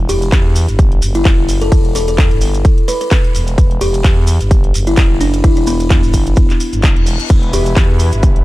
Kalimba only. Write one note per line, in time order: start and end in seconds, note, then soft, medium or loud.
0.09 0.23 G4 medium
1.15 1.26 E4 medium
1.61 1.72 A4 medium
1.95 2.03 A4 medium
2.08 2.15 A4 medium
2.88 2.96 B4 medium
3.01 3.08 B4 medium
3.81 3.95 G4 loud
4.87 4.98 E4 medium
5.21 5.42 D4 medium
5.44 5.52 E4 medium
5.57 5.64 E4 medium
5.67 6.03 B3 medium
7.53 7.67 G4 medium